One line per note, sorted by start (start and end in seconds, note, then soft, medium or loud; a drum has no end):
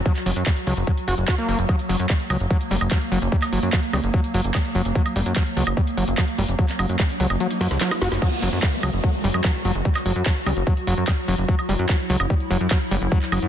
0.00 8.21 F#3 medium
0.00 1.71 F#4 medium
0.06 0.13 F#3 medium
0.06 kick loud
0.06 closed hi-hat medium
0.16 clap soft
0.16 closed hi-hat medium
0.26 0.33 F#1 loud
0.26 0.30 F#3 loud
0.26 open hi-hat loud
0.36 0.43 F#2 medium
0.36 closed hi-hat medium
0.46 0.51 G3 loud
0.46 kick loud
0.46 clap loud
0.46 closed hi-hat medium
0.57 closed hi-hat medium
0.67 0.74 C#2 medium
0.67 0.74 F#3 medium
0.67 open hi-hat loud
0.77 0.84 F#1 medium
0.77 closed hi-hat medium
0.87 0.91 F#3 loud
0.87 kick loud
0.87 closed hi-hat medium
0.97 closed hi-hat medium
1.08 1.15 F#1 loud
1.08 1.15 F#4 medium
1.08 open hi-hat loud
1.18 1.25 F#1 medium
1.18 closed hi-hat medium
1.28 1.35 F#4 medium
1.28 kick loud
1.28 clap loud
1.28 closed hi-hat medium
1.38 1.48 A#3 medium
1.38 closed hi-hat medium
1.48 1.55 F#1 medium
1.48 1.58 A#3 medium
1.48 open hi-hat medium
1.59 1.66 F#1 medium
1.59 closed hi-hat medium
1.69 1.76 F#3 medium
1.69 8.24 A#3 medium
1.69 kick loud
1.69 closed hi-hat medium
1.69 high woodblock soft
1.79 closed hi-hat medium
1.89 1.96 F#1 medium
1.89 1.96 F#3 medium
1.89 open hi-hat loud
2.00 2.06 F#2 medium
2.00 closed hi-hat medium
2.10 2.14 G3 loud
2.10 kick loud
2.10 clap loud
2.10 closed hi-hat medium
2.20 closed hi-hat medium
2.30 2.37 C#2 medium
2.30 2.37 F#3 medium
2.30 open hi-hat medium
2.30 high woodblock medium
2.40 2.47 F#1 medium
2.40 closed hi-hat medium
2.50 2.57 F#3 medium
2.50 kick loud
2.50 closed hi-hat medium
2.61 closed hi-hat medium
2.71 2.78 F#1 loud
2.71 2.75 G3 loud
2.71 open hi-hat loud
2.81 2.88 F#1 medium
2.81 closed hi-hat medium
2.81 high woodblock soft
2.91 2.98 F#3 medium
2.91 kick loud
2.91 clap loud
2.91 closed hi-hat medium
3.02 closed hi-hat medium
3.12 3.19 F#1 medium
3.12 3.19 F#3 medium
3.12 open hi-hat medium
3.22 3.29 F#1 medium
3.22 closed hi-hat medium
3.32 3.36 G3 loud
3.32 kick loud
3.32 closed hi-hat medium
3.42 clap soft
3.42 closed hi-hat medium
3.42 high woodblock medium
3.53 3.59 F#1 loud
3.53 3.59 F#3 medium
3.53 open hi-hat loud
3.63 3.70 F#2 medium
3.63 closed hi-hat medium
3.73 3.80 F#3 medium
3.73 kick loud
3.73 clap loud
3.73 closed hi-hat medium
3.83 closed hi-hat medium
3.93 4.00 C#2 medium
3.93 3.98 G3 loud
3.93 open hi-hat medium
3.93 high woodblock soft
4.04 4.11 F#1 medium
4.04 closed hi-hat medium
4.14 4.21 F#3 medium
4.14 kick loud
4.14 closed hi-hat medium
4.24 closed hi-hat medium
4.34 4.41 F#1 loud
4.34 4.41 F#3 medium
4.34 open hi-hat loud
4.44 4.51 F#1 medium
4.44 closed hi-hat medium
4.55 4.59 G3 loud
4.55 kick loud
4.55 clap loud
4.55 closed hi-hat medium
4.55 high woodblock medium
4.65 closed hi-hat medium
4.75 4.82 F#1 loud
4.75 4.82 F#3 medium
4.75 open hi-hat medium
4.85 4.92 F#1 medium
4.85 closed hi-hat medium
4.95 5.02 F#3 medium
4.95 kick loud
4.95 closed hi-hat medium
4.95 riser medium
5.06 closed hi-hat medium
5.06 high woodblock soft
5.16 5.23 F#1 loud
5.16 5.20 G3 loud
5.16 open hi-hat loud
5.26 5.33 F#2 medium
5.26 closed hi-hat medium
5.36 5.43 F#3 medium
5.36 kick loud
5.36 clap loud
5.36 closed hi-hat medium
5.46 closed hi-hat medium
5.57 5.64 C#2 medium
5.57 5.64 F#3 medium
5.57 open hi-hat medium
5.67 5.74 F#1 medium
5.67 high woodblock medium
5.77 5.81 G3 loud
5.77 kick loud
5.77 closed hi-hat medium
5.87 closed hi-hat medium
5.97 6.04 F#1 loud
5.97 6.04 F#3 medium
5.97 open hi-hat loud
6.08 6.15 F#1 medium
6.08 closed hi-hat medium
6.18 6.25 F#3 medium
6.18 kick loud
6.18 clap loud
6.18 closed hi-hat medium
6.18 high woodblock soft
6.28 closed hi-hat medium
6.38 6.45 F#1 loud
6.38 6.42 G3 loud
6.38 open hi-hat medium
6.49 6.55 F#1 medium
6.49 closed hi-hat medium
6.59 6.66 F#3 medium
6.59 kick loud
6.59 closed hi-hat medium
6.69 clap soft
6.69 closed hi-hat medium
6.79 6.86 F#1 medium
6.79 6.86 F#3 medium
6.79 open hi-hat loud
6.79 high woodblock medium
6.89 6.96 F#2 medium
6.89 closed hi-hat medium
7.00 7.04 G3 loud
7.00 kick loud
7.00 clap loud
7.00 closed hi-hat medium
7.10 closed hi-hat medium
7.20 7.27 C#2 loud
7.20 7.27 F#3 medium
7.20 open hi-hat medium
7.30 7.37 F#1 medium
7.30 closed hi-hat medium
7.30 high woodblock soft
7.40 7.47 F#3 medium
7.40 closed hi-hat medium
7.51 closed hi-hat medium
7.61 7.68 F#2 loud
7.61 7.68 F#3 medium
7.61 snare medium
7.61 open hi-hat loud
7.71 7.78 C#2 medium
7.71 snare medium
7.71 closed hi-hat medium
7.81 7.91 F#3 loud
7.81 snare medium
7.81 clap loud
7.81 closed hi-hat medium
7.91 snare medium
7.91 closed hi-hat medium
7.91 high woodblock medium
8.02 8.09 F#1 loud
8.02 8.08 F#4 loud
8.02 snare loud
8.02 open hi-hat medium
8.12 8.19 F#1 medium
8.12 snare medium
8.12 closed hi-hat medium
8.22 8.29 F#3 medium
8.22 13.48 F#3 medium
8.22 11.51 F#4 medium
8.22 kick loud
8.22 closed hi-hat medium
8.22 crash loud
8.22 downlifter medium
8.22 high woodblock soft
8.32 closed hi-hat soft
8.42 8.49 F#1 loud
8.42 8.49 F#3 medium
8.42 open hi-hat loud
8.53 8.60 F#2 medium
8.53 closed hi-hat soft
8.63 8.67 G3 loud
8.63 kick loud
8.63 clap loud
8.63 closed hi-hat medium
8.73 closed hi-hat soft
8.83 8.90 C#2 medium
8.83 8.90 F#3 medium
8.83 open hi-hat medium
8.83 high woodblock medium
8.93 9.00 F#1 medium
8.93 closed hi-hat soft
9.04 9.11 F#3 medium
9.04 kick loud
9.04 closed hi-hat medium
9.14 closed hi-hat soft
9.24 9.31 F#1 loud
9.24 9.28 G3 loud
9.24 open hi-hat loud
9.34 9.41 F#2 medium
9.34 closed hi-hat soft
9.34 high woodblock soft
9.44 9.51 F#3 medium
9.44 kick loud
9.44 clap loud
9.44 closed hi-hat medium
9.55 closed hi-hat soft
9.65 9.72 F#1 loud
9.65 9.72 F#3 medium
9.65 open hi-hat loud
9.75 9.82 F#1 medium
9.75 closed hi-hat soft
9.85 9.89 G3 loud
9.85 kick loud
9.85 closed hi-hat medium
9.95 clap soft
9.95 closed hi-hat soft
9.95 high woodblock medium
10.06 10.13 F#1 loud
10.06 10.13 F#3 medium
10.06 open hi-hat loud
10.16 10.23 F#2 medium
10.16 closed hi-hat soft
10.26 10.33 F#3 medium
10.26 kick loud
10.26 clap loud
10.26 closed hi-hat medium
10.36 closed hi-hat soft
10.46 10.53 C#2 medium
10.46 10.51 G3 loud
10.46 open hi-hat loud
10.46 high woodblock soft
10.57 10.64 F#1 medium
10.57 closed hi-hat soft
10.67 10.74 F#3 medium
10.67 kick loud
10.67 closed hi-hat medium
10.77 closed hi-hat soft
10.87 10.94 F#1 loud
10.87 10.94 F#3 medium
10.87 open hi-hat loud
10.98 11.04 F#2 medium
10.98 closed hi-hat soft
11.08 11.12 G3 loud
11.08 kick loud
11.08 clap loud
11.08 closed hi-hat medium
11.08 high woodblock medium
11.18 closed hi-hat soft
11.28 11.35 F#1 loud
11.28 11.35 F#3 medium
11.28 open hi-hat loud
11.38 11.45 F#1 medium
11.38 closed hi-hat soft
11.48 11.55 F#3 medium
11.48 13.48 E4 medium
11.48 kick loud
11.48 closed hi-hat medium
11.59 closed hi-hat soft
11.59 high woodblock soft
11.69 11.76 F#1 loud
11.69 11.73 G3 loud
11.69 open hi-hat loud
11.79 11.86 F#2 medium
11.79 closed hi-hat soft
11.89 11.96 F#3 medium
11.89 kick loud
11.89 clap loud
11.89 closed hi-hat medium
12.00 closed hi-hat soft
12.10 12.17 C#2 medium
12.10 12.17 F#3 medium
12.10 open hi-hat loud
12.20 12.27 F#1 medium
12.20 closed hi-hat soft
12.20 high woodblock medium
12.30 12.34 G3 loud
12.30 kick loud
12.30 closed hi-hat medium
12.40 closed hi-hat soft
12.51 12.57 F#1 loud
12.51 12.57 F#3 medium
12.51 open hi-hat loud
12.61 12.68 F#2 medium
12.61 closed hi-hat soft
12.71 12.78 F#3 medium
12.71 kick loud
12.71 clap loud
12.71 closed hi-hat medium
12.71 high woodblock soft
12.81 closed hi-hat soft
12.91 12.98 F#1 loud
12.91 12.96 G3 loud
12.91 open hi-hat loud
13.02 13.08 F#1 medium
13.02 closed hi-hat soft
13.12 13.19 F#3 medium
13.12 kick loud
13.12 closed hi-hat medium
13.22 clap soft
13.22 closed hi-hat soft
13.32 13.39 F#1 loud
13.32 13.39 F#3 medium
13.32 open hi-hat loud
13.32 high woodblock medium
13.42 13.48 F#2 medium
13.42 closed hi-hat soft